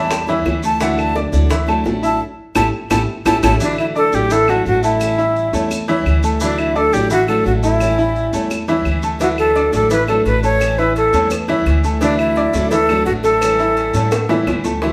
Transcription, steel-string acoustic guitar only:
0.10 muted steel-string acoustic guitar stroke
0.27 G3 C#4 E4
0.45 E3 G3 C#4 E4
0.80 D3 F#3 A3 D4 E4
1.32 F#3 A3 D4 E4
1.50 muted steel-string acoustic guitar stroke
1.67 F#3 A3 D4 E4
1.84 F#3 A3 D4 E4
2.55 A3 C#4 E4
2.90 A3 C#4 E4
3.25 A3 C#4 E4
3.44 A3 C#4 E4
3.61 D3 F#3 A3 D4 E4
4.13 F#3 A3 D4 E4
4.31 muted steel-string acoustic guitar stroke
4.49 F#3 A3 D4 E4
4.66 F#3 A3 D4 E4
5.01 E3 G3 C#4 E4
5.53 G3 C#4 E4
5.70 muted steel-string acoustic guitar stroke
5.88 G3 C#4 E4
6.06 E3 G3 C#4 E4
6.41 D3 F#3 A3 D4 E4
6.92 F#3 A3 D4 E4
7.11 muted steel-string acoustic guitar stroke
7.28 F#3 A3 D4 E4
7.44 F#3 A3 D4 E4
7.80 E3 G3 C#4 E4
8.33 G3 C#4 E4
8.51 muted steel-string acoustic guitar stroke
8.68 G3 C#4 E4
8.85 E3 G3 C#4 E4
9.19 D3 F#3 A3 D4 E4
9.72 F#3 A3 D4 E4
9.90 muted steel-string acoustic guitar stroke
10.07 F#3 A3 D4 E4
10.25 F#3 A3 D4 E4
10.60 E3 G3 C#4 E4
11.13 G3 C#4 E4
11.30 muted steel-string acoustic guitar stroke
11.48 G3 C#4 E4
11.66 E3 G3 C#4 E4
12.01 D3 F#3 A3 D4 E4
12.53 F#3 A3 D4 E4
12.71 muted steel-string acoustic guitar stroke
12.89 F#3 A3 D4 E4
13.07 F#3 A3 D4 E4
13.41 E3 G3 C#4 E4
13.94 G3 C#4 E4
14.12 muted steel-string acoustic guitar stroke
14.29 G3 C#4 E4
14.47 E3 G3 C#4 E4
14.82 D3 F#3 A3 D4 E4

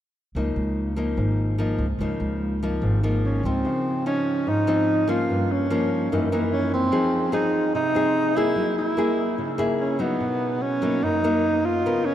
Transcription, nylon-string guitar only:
0.35 C#3 F3 A#3 D#4
0.96 F3 A#3 D#4
1.18 G#2
1.58 F3 A#3 D#4
2.00 C#3 F3 A#3 D#4
2.63 F3 A#3 D#4
2.83 G#2
3.03 F3 A#3 D#4
3.45 F3 C4 D#4
3.65 C#3
4.06 F3 D#4
4.47 G#2
4.67 F3 C4 D#4
5.08 F3 A#3 C#4
5.30 G2
5.70 F3 A#3 C#4
6.12 F#2 E3 A#3 D#4
6.32 E3 A#3 D#4
6.91 F3 C4 D#4 G#4
7.32 C4 D#4 G#4
7.74 C3
7.95 C4 D#4 G#4
8.36 A#3 E4 G#4
8.56 F#3
8.97 A#3 E4 G#4
9.38 C#3
9.58 A#3 E4 G#4
9.99 F#3 D#4
10.20 B2
10.82 F#3 A#3 D#4
11.03 F#2
11.24 F#3 A#3 D#4
11.86 C#3 B3 F4 A#4

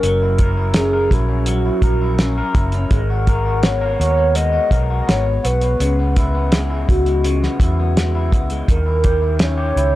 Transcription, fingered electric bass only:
0.03 F#1
1.11 A#1
1.82 A#1
2.55 F#1
2.91 G#1
4.00 D#2
4.71 B1
5.08 G#1
5.45 B1
5.80 C#2
6.89 C#2
7.60 E2
8.33 C#2
8.68 D#2
9.76 C#2

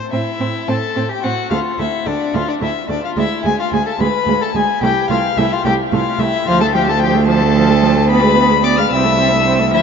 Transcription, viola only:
0.12 C4
0.40 C4
0.68 C4
0.96 C4
1.23 C4
1.51 A3
1.79 A3
2.06 A3
2.34 A3
2.61 A3
2.89 A3
3.16 G#3
3.44 G#3
3.73 G#3
4.00 G#3
4.28 G#3
4.55 G#3
4.83 A3
5.10 A3
5.38 A3
5.65 A3
5.92 A3
6.19 A3
6.47 F3
6.61 A3
6.74 F3
6.88 A3
7.01 F3
7.15 A3
7.28 F3
7.42 A3
7.56 F3
7.69 A3
7.82 F3
7.96 A3
8.09 B3
8.22 G#3
8.35 B3
8.49 G#3
8.63 B3
8.77 G#3
8.91 C4
9.05 A3
9.18 C4
9.32 A3
9.45 C4
9.59 A3
9.73 F3

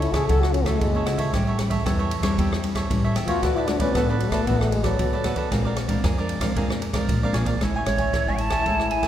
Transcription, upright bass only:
Already playing: C#2
0.12 C#2
0.29 C#2
0.81 F#1
1.07 C#2
1.33 A1
1.86 E2
2.21 E2
2.38 E2
2.91 A1
3.16 E2
3.43 D2
3.95 A1
4.30 A1
4.47 A1
4.99 D2
5.24 D2
5.52 A#1
6.04 F2
6.39 F2
6.56 F2
7.09 A#1
7.33 A#1
7.61 A1
7.86 A1
8.14 A1
8.27 A1
8.66 A1

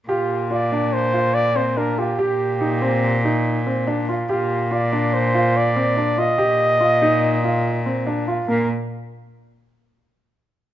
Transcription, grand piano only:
0.09 G4
0.51 F4
0.72 D4
1.13 F4
1.55 C4
1.77 D4
1.98 F4
2.19 G4
2.61 D#4
2.82 C4
3.25 D#4
3.67 C4
3.87 D4
4.09 F4
4.29 G4
4.71 F4
4.93 D4
5.34 F4
5.76 C4
5.97 D4
6.18 F4
6.38 G4
6.80 F4
7.02 D#4
7.44 F4
7.86 C4
8.07 D4
8.28 F4
8.48 A#3

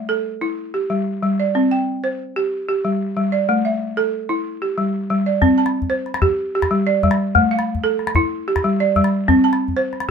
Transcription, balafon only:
Already playing: E5
0.09 A4
0.41 E4
0.74 G4
0.90 G3
1.23 G3
1.40 D5
1.55 C4
1.71 G5
2.04 C5
2.36 G4
2.69 G4
2.85 G3
3.16 G3
3.32 D5
3.49 A3
3.65 E5
3.97 A4
4.29 E4
4.62 G4
4.78 G3
5.10 G3
5.26 D5
5.42 C4
5.58 A5
5.90 C5
6.22 G4
6.55 G4
6.71 G3
6.87 D5
7.03 G3
7.35 A3
7.51 F5
7.84 A4
8.16 E4
8.48 G4
8.64 G3
8.80 D5
8.96 G3
9.28 C4
9.44 A5
9.77 C5

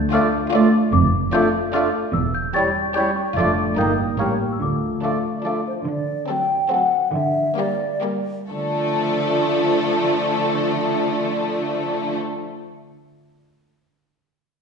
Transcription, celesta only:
0.13 F6
0.93 D6
1.33 G6
1.74 F6
2.13 E6
2.35 G6
2.54 A6
2.96 G6
3.16 C#6
3.37 D6
3.78 G6
3.98 D#6
4.20 F6
4.52 E6
4.62 D6

